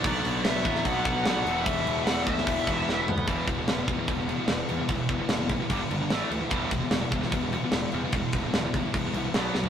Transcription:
<<
  \new Staff \with { instrumentName = "Lead electric guitar" } { \time 4/4 \key e \minor \tempo 4 = 148 d''4 e''4 fis''8 fis''8 fis''4 | e''4 fis''8 e''2 r8 | r1 | r1 |
r1 | r1 | }
  \new Staff \with { instrumentName = "Distorted electric guitar" } { \time 4/4 \key e \minor <b, fis b d' fis'>2~ <b, fis b d' fis'>8 <b, fis b d' fis'>8 <b, fis b d' fis'>8 <e b e' g'>8~ | <e b e' g'>2 <e b e' g'>8 <e b e' g'>4 r8 | <e b e' g' b'>8 <e b e' g' b'>8 <e b e' g' b'>8 <e b e' g' b'>8 <e b e' g' b'>8 <e b e' g' b'>8 <e b e' g' b'>8 <e b e' g' b'>8 | <e b e' g' b'>8 <e b e' g' b'>8 <e b e' g' b'>8 <e b e' g' b'>8 <g d' g' d''>8 <g d' g' d''>8 <a, e a e'>8 <a, e a e'>8 |
<e g b e'>8 <e g b e'>8 <e g b e'>8 <e g b e'>8 <e g b e'>8 <e g b e'>8 <e g b e'>8 <e g b e'>8 | <e g b e'>8 <e g b e'>8 <e g b e'>8 <e g b e'>8 <e g b e'>8 <e g b e'>8 <b, fis b fis'>8 <b, fis b fis'>8 | }
  \new Staff \with { instrumentName = "Distorted electric guitar" } { \clef bass \time 4/4 \key e \minor <b, fis b>4. <b, fis b>2 <e, b, e>8~ | <e, b, e>4 <e, b, e>2~ <e, b, e>8 r8 | <e, b, e>8 <e, b,>16 <e, b,>16 <e, b,>16 <e, b,>16 <e, b,>16 <e, b,>16 <e, b,>16 <e, b,>16 <e, b,>16 <e, b,>16 <e, b,>8 <e, b,>16 <e, b,>16 | <e, b,>8 <e, b,>16 <e, b,>16 <e, b,>16 <e, b,>16 <e, b,>16 <e, b,>16 <g, d g>16 <g, d>16 <g, d>16 <g, d>16 <a, e a>8 <a, e>16 <a, e>16 |
<e, b, e>8 <e, b,>16 <e, b,>16 <e, b,>16 <e, b,>16 <e, b,>16 <e, b,>16 <e, b,>16 <e, b,>16 <e, b,>16 <e, b,>16 <e, b,>8 <e, b,>16 <e, b,>16 | <e, b,>8 <e, b,>16 <e, b,>16 <e, b,>16 <e, b,>16 <e, b,>16 <e, b,>16 <e, b,>16 <e, b,>16 <e, b,>16 <e, b,>16 <b, fis b>8 <b, fis>16 fis16 | }
  \new Staff \with { instrumentName = "Distorted electric guitar" } { \clef bass \time 4/4 \key e \minor <b, fis b>4. <b, fis b>4. <b, fis b>8 <e, b, e>8~ | <e, b, e>4 <e, b, e>4. <e, b, e>4 r8 | <e, b, e>8 <e, b,>16 <e, b,>16 <e, b,>16 <e, b,>16 <e, b,>16 <e, b,>16 <e, b,>16 <e, b,>16 <e, b,>16 <e, b,>16 <e, b,>8 <e, b,>16 <e, b,>16 | <e, b,>8 <e, b,>16 <e, b,>16 <e, b,>16 <e, b,>16 <e, b,>16 <e, b,>16 <g, d g>16 <g, d>16 <g, d>16 <g, d>16 <a, e a>8 <a, e>16 <a, e>16 |
<e, b, e>8 <e, b,>16 <e, b,>16 <e, b,>16 <e, b,>16 <e, b,>16 <e, b,>16 <e, b,>16 <e, b,>16 <e, b,>16 <e, b,>16 <e, b,>8 <e, b,>16 <e, b,>16 | <e, b,>8 <e, b,>16 <e, b,>16 <e, b,>16 <e, b,>16 <e, b,>16 <e, b,>16 <e, b,>16 <e, b,>16 <e, b,>16 <e, b,>16 <b, fis b>8 <b, fis>16 r16 | }
  \new Staff \with { instrumentName = "Picked electric bass" } { \clef bass \time 4/4 \key e \minor b,,8 b,,8 b,,8 a,,8 b,,8 b,,8 b,,8 e,,8 | e,,8 e,,8 e,,8 d,8 e,,8 e,,8 e,,8 d,8 | e,,8 e,,8 e,,8 e,,8 e,,4 e,,8 e,8 | e,,8 e,,8 fis,,4 g,,8 g,,8 a,,8 d,8 |
e,,8 e,,8 e,,8 e,,8 e,,4 e,,8 e,8 | e,,8 e,,8 e,,4 e,,8 c,8 b,,8 b,,8 | }
  \new DrumStaff \with { instrumentName = "Drums" } \drummode { \time 4/4 <cymc bd>8 cymc8 <cymc sn>8 <cymc bd>16 sn16 <cymc bd>8 <cymc bd>8 <cymc sn>8 cymc8 | <cymc bd>8 cymc8 <cymc sn>8 <cymc bd>16 sn16 <cymc bd>8 <cymc bd>8 sn8 toml16 tomfh16 | <cymc bd>8 <cymc bd>8 <cymc sn>8 <cymc bd>8 <cymc bd>8 cymc8 <cymc sn>8 cymc8 | <cymc bd>8 <cymc bd>8 <cymc sn>8 <cymc bd>8 <cymc bd>8 cymc8 <cymc sn>8 cymc8 |
<cymc bd>8 <cymc bd>8 <cymc sn>8 <cymc bd>16 sn16 <cymc bd>8 cymc8 <cymc sn>8 cymc8 | <cymc bd>8 <cymc bd>8 <cymc sn>8 <cymc bd>8 <cymc bd>8 cymc8 <cymc sn>8 sn16 tomfh16 | }
>>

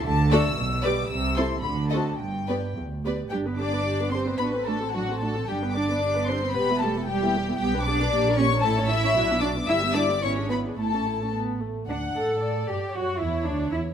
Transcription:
<<
  \new Staff \with { instrumentName = "Violin section" } { \time 2/4 \key g \major \tempo 4 = 113 a''8 e'''4 d'''8 | e'''8 c'''8 b''8 a''8 | g''4 r4 | g''8 d'''4 c'''8 |
b''8 a''8 fis''8 a''8 | g''8 d'''4 c'''8 | b''8 a''8 g''4 | \key d \major g''8 d'''4 cis'''8 |
a''8 e'''4 d'''8 | e'''8 d'''8 cis'''8 b''8 | a''4 r4 | d'8 a'4 g'8 |
fis'8 e'8 d'8 e'8 | }
  \new Staff \with { instrumentName = "Violin section" } { \time 2/4 \key g \major r8 <a' d''>16 r8. <b' d''>16 r16 | r8 <a' c''>16 r8. <a' ees''>16 r16 | r8 <b' d''>16 r8. <b' d''>16 r16 | g'8 d''4 c''8 |
b'8 a'8 fis'8 a'8 | g'8 d''4 c''8 | b'8 a'8 g'4 | \key d \major g'8 d''4 cis''8 |
a'8 e''4 d''8 | e''8 d''8 cis''8 b'8 | a'4 r4 | fis''4 d''4 |
cis''2 | }
  \new Staff \with { instrumentName = "Viola section" } { \time 2/4 \key g \major r8 <a fis'>16 r8. <g g'>16 r16 | r8 <c' e'>16 r8. <c' fis'>16 r16 | r8 <b g'>16 r8. <b g'>16 r16 | <d' g'>16 <b b'>16 <d' g'>16 <b b'>16 <d' g'>16 <b b'>16 <d' g'>16 <b b'>16 |
<d' fis'>16 <c' a'>16 <d' fis'>16 <c' a'>16 <d' fis'>16 <c' a'>16 <d' fis'>16 <c' a'>16 | <d' g'>16 <b b'>16 <d' g'>16 <b b'>16 <d' g'>16 <b b'>16 <d' g'>16 <b b'>16 | <g g'>16 <b e'>16 <g g'>16 <b e'>16 <g g'>16 <b e'>16 <g g'>16 <b e'>16 | \key d \major <b g'>16 <d' b'>16 <b g'>16 <d' b'>16 <bes g'>16 <d' bes'>16 <bes g'>16 <d' bes'>16 |
<e' a'>16 <cis' cis''>16 <e' a'>16 <cis' cis''>16 <d' fis'>16 <b d'>16 <d' fis'>16 <b d'>16 | <g e'>16 <b g'>16 <g e'>16 <b g'>16 <b e'>16 <d' gis'>16 <b e'>16 <d' gis'>16 | <a e'>16 <cis' a'>16 <a e'>16 <cis' a'>16 b8 a8 | d'8 a'4 g'8 |
fis'8 e'8 d'8 e'8 | }
  \new Staff \with { instrumentName = "Cello section" } { \time 2/4 \key g \major d4 b,4 | c4 d4 | g,4 e,8 d,8 | g8 d'4 c'8 |
b8 a8 fis8 a8 | g8 d'4 c'8 | b8 a8 g4 | \key d \major g8 d'4 cis'8 |
a8 e'4 d'8 | e'8 d'8 cis'8 b8 | a4 r4 | d'8 a'4 g'8 |
fis'8 e'8 d'8 e'8 | }
  \new Staff \with { instrumentName = "Double bass section" } { \clef bass \time 2/4 \key g \major d,4 b,,4 | c,4 d,4 | g,,4 d,4 | g,,2 |
a,,2 | g,,2 | e,,2 | \key d \major b,,4 bes,,4 |
a,,4 b,,4 | g,,4 gis,,4 | a,,4. r8 | d,8 a,4 g,8 |
fis,8 e,8 d,8 e,8 | }
>>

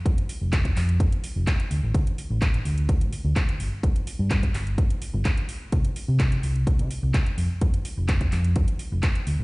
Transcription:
<<
  \new Staff \with { instrumentName = "Fingered electric bass" } { \clef bass \time 4/4 \key d \dorian \tempo 4 = 127 f,16 r8 f,,8 r16 f,8 r8. f,,16 r8 d,16 a,,16 | d,16 r8 a,,8 r16 d,8. a,,16 r16 d,16 r8 g,,16 r16 | g,,16 r8 g,8 r16 g,,8 r8. g,,16 r4 | c,16 r8 c8 r16 c,8. c16 r16 c,16 r8 f,16 r16 |
f,16 r8 f,,8 r16 f,8 r8. f,,16 r8 d,16 a,,16 | }
  \new DrumStaff \with { instrumentName = "Drums" } \drummode { \time 4/4 <hh bd>16 hh16 hho8 <hc hh bd>16 <hh bd>16 <hc hho>16 hh16 <hh bd>16 hh16 hho8 <hc hh bd>16 hh16 hho8 | <hh bd>16 hh16 hho8 <hc hh bd>16 hh16 hho16 hh16 <hh bd>16 hh16 hho8 <hc hh bd>16 hh16 hho8 | <hh bd>16 hh16 hho8 <hc hh bd>16 <hh bd>16 <hc hho>16 hh16 <hh bd>16 hh16 hho8 <hc hh bd>16 hh16 hho8 | <hh bd>16 hh16 hho8 <hc hh bd>16 hh16 hho16 hh16 <hh bd>16 hh16 hho8 <hc hh bd>16 hh16 hho8 |
<hh bd>16 hh16 hho8 <hc hh bd>16 <hh bd>16 <hc hho>16 hh16 <hh bd>16 hh16 hho8 <hc hh bd>16 hh16 hho8 | }
>>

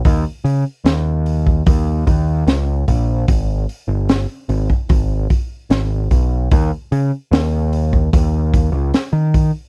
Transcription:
<<
  \new Staff \with { instrumentName = "Picked electric bass" } { \clef bass \time 4/4 \tempo 4 = 74 ees,16 r16 des16 r16 ees,4 ees,8 ees,8 des,8 bes,,8 | aes,,8 r16 g,,8 r16 aes,,16 r16 aes,,8 r8 aes,,8 ces,8 | ees,16 r16 des16 r16 ees,4 ees,8. des,16 r16 ees8 r16 | }
  \new DrumStaff \with { instrumentName = "Drums" } \drummode { \time 4/4 <hho bd>8 hho8 <hho sn>8 hho16 bd16 <hho bd>8 <hho bd>8 <hho sn>8 <hho bd>8 | <hho bd>8 hho8 <hho sn>8 hho16 bd16 <hho bd>8 <hho bd>8 <hho sn>8 <hho bd>8 | <hho bd>8 hho8 <hho sn>8 hho16 bd16 <hho bd>8 <hho bd>8 <hho sn>8 <hho bd>8 | }
>>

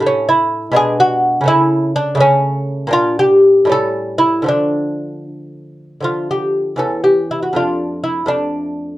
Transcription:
<<
  \new Staff \with { instrumentName = "Lute" } { \time 6/8 \key d \minor \tempo 4. = 81 cis'8 e'4 gis'8 fis'4 | e'4 d'8 cis'4. | f'8 g'4 a'4 e'8 | d'4. r4. |
f'8 g'4 a'8 g'8 e'16 fis'16 | f'4 e'8 d'4. | }
  \new Staff \with { instrumentName = "Lute" } { \clef bass \time 6/8 \key d \minor <a, a>4. <b, gis d'>4. | <cis a cis'>4. <cis a>4. | <bes, bes d'>4. <a, g cis'>4. | <d f a>2. |
<d f a>4. <e, e cis'>4. | <f, a d'>4. <f, a>4. | }
>>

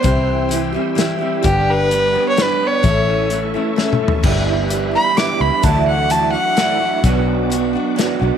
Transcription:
<<
  \new Staff \with { instrumentName = "Fiddle" } { \time 3/4 \key g \lydian \tempo 4 = 129 c''4 r2 | g'8 b'4~ b'16 cis''16 b'8 cis''8~ | cis''4 r2 | r4. b''8 d'''8 b''8 |
a''8 fis''8 a''8 fis''4.~ | fis''8 r2 r8 | }
  \new Staff \with { instrumentName = "Tonewheel organ" } { \time 3/4 \key g \lydian << { <c'' e'''>2. | <b' d'''>2. | <a' cis'''>2. | <g' b''>2. |
<fis' d'''>2. | <b' d'''>2. | } \\ { g''2.~ | g''2. | e''2. | e''2.~ |
e''2. | fis''2. | } >> }
  \new Staff \with { instrumentName = "Steel-string acoustic guitar" } { \time 3/4 \key g \lydian <c e c' e' g'>4 <e c' e' g'>8 <c' e' g'>8 <e c' e' g'>8 <c' e' g'>8 | <g, d g b d' g'>4 <g b d' g'>8 <g b d' g'>8 <g b d' g'>4 | <a, e a cis' e' a'>4 <a cis' e' a'>8 <a cis' e' a'>8 <a cis' e' a'>4 | <g d' e' b'>4 <g d' e' b'>8 <d' e' b'>8 <g d' e' b'>8 <d' e' b'>8 |
<d e a e' fis'>4 <e a e' fis'>8 <a e' fis'>8 <e a e' fis'>8 <a e' fis'>8 | <b, fis b d' fis'>4 <fis b d' fis'>8 <b d' fis'>8 <fis b d' fis'>8 <b d' fis'>8 | }
  \new Staff \with { instrumentName = "Clean electric guitar" } { \clef bass \time 3/4 \key g \lydian c8 e8 e8 g8 e'8 g8 | g,8 d8 g8 b8 d'8 b8 | a,8 e8 e8 a8 cis'8 a8 | <g, d e g b e'>2 <g, d e g b e'>4 |
<d fis a d' e'>2 <d fis a d' e'>4 | <b, fis b d' fis'>2 <b, fis b d' fis'>4 | }
  \new Staff \with { instrumentName = "Fingered electric bass" } { \clef bass \time 3/4 \key g \lydian c,2 r4 | g,,2 r4 | a,,2 r4 | g,,2 r8 cis,16 r16 |
d,2 r4 | b,,2 r8 b,,16 r16 | }
  \new DrumStaff \with { instrumentName = "Drums" } \drummode { \time 3/4 <hh bd>4 hh4 <hh sn>4 | <hh bd>4 hh4 <hh sn>4 | <hh bd>4 hh4 \tuplet 3/2 { sn8 toml8 tomfh8 } | <cymc bd>4 hh4 <hh sn>4 |
<hh bd>4 hh4 <hh sn>4 | <hh bd>4 hh4 <hh sn>4 | }
>>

